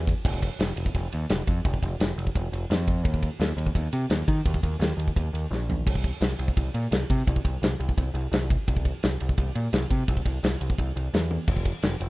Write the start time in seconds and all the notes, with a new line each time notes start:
Already playing: E2
0.07 kick, ride
0.25 F1, kick, crash
0.34 kick
0.42 kick, ride
0.59 F1, snare, ride
0.76 F1, ride
0.86 kick
0.95 F1, kick, ride
1.12 D#2, ride
1.29 F1, snare, ride
1.47 F2, kick, ride
1.65 F1, kick, ride
1.74 kick
1.83 F1, kick, ride
2.00 F1, snare, ride
2.16 F1, ride
2.27 kick
2.35 F1, kick, ride
2.52 F1, ride
2.70 F2, snare, ride
2.88 kick, ride
3.05 D#2, kick, ride
3.14 kick
3.23 kick, ride
3.40 D#2, snare, ride
3.57 D#2, ride
3.66 kick
3.75 D#2, kick, ride
3.93 C3, ride
4.10 D#2, snare, ride
4.28 D#3, kick, ride
4.45 D#2, kick, ride
4.54 kick
4.63 D#2, kick, ride
4.79 D#2, snare, ride
4.97 D#2, ride
5.08 kick
5.16 D#2, kick, ride
5.33 D#2, ride
5.51 A#1, snare
5.70 floor tom
5.87 C2, kick, ride, crash
5.95 kick
6.04 kick, ride
6.21 C2, snare, ride
6.39 C2, ride
6.48 kick
6.57 C2, kick, ride
6.74 A#2, ride
6.91 C2, snare, ride
7.10 C3, kick, ride
7.27 C2, kick, ride
7.36 kick
7.45 C2, kick, ride
7.62 C2, snare, ride
7.80 C2, ride
7.89 kick
7.97 C2, kick, ride
8.14 C2, ride
8.32 C2, snare, ride
8.50 kick, ride
8.68 C2, kick, ride
8.77 kick
8.85 kick, ride
9.03 C2, snare, ride
9.20 C2, ride
9.29 kick
9.38 C2, kick, ride
9.55 A#2, ride
9.73 C2, snare, ride
9.91 C3, kick, ride
10.08 C2, kick, ride
10.17 kick
10.26 C2, kick, ride
10.43 C2, snare, ride
10.61 C2, ride
10.70 kick
10.78 C2, kick, ride
10.96 C2, ride
11.14 E2, snare, ride
11.31 high tom
11.48 F1, kick, crash
11.56 kick
11.65 kick, ride
11.83 F1, snare, ride
12.01 F1, ride